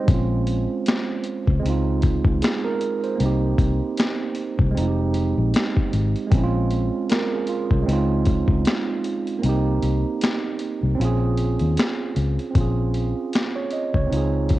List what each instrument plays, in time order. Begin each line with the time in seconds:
Already playing: tine electric piano D#4 G4 C5
0.04 tine electric piano G#3 C4
0.08 fingered electric bass A#1, tine electric piano C#4, kick, closed hi-hat
0.14 tine electric piano F4
0.47 closed hi-hat
0.86 finger snap, snare, closed hi-hat
1.24 closed hi-hat
1.47 fingered electric bass C#2, kick
1.59 tine electric piano G#3 C4
1.64 fingered electric bass C#2, tine electric piano D#4, closed hi-hat
1.69 tine electric piano F4
2.02 kick, closed hi-hat
2.25 fingered electric bass C#2, kick
2.42 tine electric piano G#4, finger snap, snare, closed hi-hat
2.64 tine electric piano A#4
2.81 closed hi-hat
3.04 tine electric piano C5, closed hi-hat
3.16 tine electric piano A#3 C4
3.20 fingered electric bass C2, tine electric piano D#4, closed hi-hat
3.26 tine electric piano G4
3.58 fingered electric bass C2, kick, closed hi-hat
3.97 finger snap, snare, closed hi-hat
4.35 closed hi-hat
4.59 fingered electric bass C2, kick
4.71 tine electric piano G#3 C4
4.77 fingered electric bass F1, tine electric piano D#4, closed hi-hat
4.81 tine electric piano F4
4.88 tine electric piano G4
5.14 closed hi-hat
5.38 fingered electric bass A#1
5.54 finger snap, snare, closed hi-hat
5.77 kick
5.93 fingered electric bass G#1, closed hi-hat
6.16 closed hi-hat
6.27 tine electric piano G#3 C4
6.32 fingered electric bass A#1, tine electric piano C#4, kick, closed hi-hat
6.37 tine electric piano E4
6.44 tine electric piano F4
6.71 closed hi-hat
7.10 tine electric piano A#4, finger snap, snare, closed hi-hat
7.33 tine electric piano G#4
7.47 tine electric piano F4, closed hi-hat
7.71 fingered electric bass C2, tine electric piano C#4, kick
7.83 tine electric piano G#3 C4
7.88 fingered electric bass C#2, tine electric piano D#4, closed hi-hat
7.93 tine electric piano F4
8.26 kick, closed hi-hat
8.48 fingered electric bass C#2, kick
8.65 finger snap, snare, closed hi-hat
9.04 closed hi-hat
9.27 closed hi-hat
9.39 tine electric piano A#3 C4
9.43 fingered electric bass C2, tine electric piano D#4, closed hi-hat
9.49 tine electric piano G4
9.82 fingered electric bass C2, closed hi-hat
10.21 finger snap, snare, closed hi-hat
10.59 closed hi-hat
10.83 fingered electric bass C2
10.95 tine electric piano C4 C#4
10.99 fingered electric bass A#1, tine electric piano F4, closed hi-hat
11.05 tine electric piano G#4
11.37 closed hi-hat
11.59 fingered electric bass D#2, closed hi-hat
11.77 finger snap, snare, closed hi-hat
12.16 fingered electric bass C#2, closed hi-hat
12.39 closed hi-hat
12.51 tine electric piano C4 C#4
12.55 fingered electric bass A#1, tine electric piano F4, kick, closed hi-hat
12.61 tine electric piano G#4
12.94 closed hi-hat
13.33 finger snap, snare, closed hi-hat
13.56 tine electric piano C#5
13.71 tine electric piano D#5, closed hi-hat
13.94 fingered electric bass C#2, tine electric piano C#5, kick
14.07 tine electric piano C4 D#4
14.11 fingered electric bass C#2, tine electric piano F4, closed hi-hat
14.17 tine electric piano G#4
14.49 kick, closed hi-hat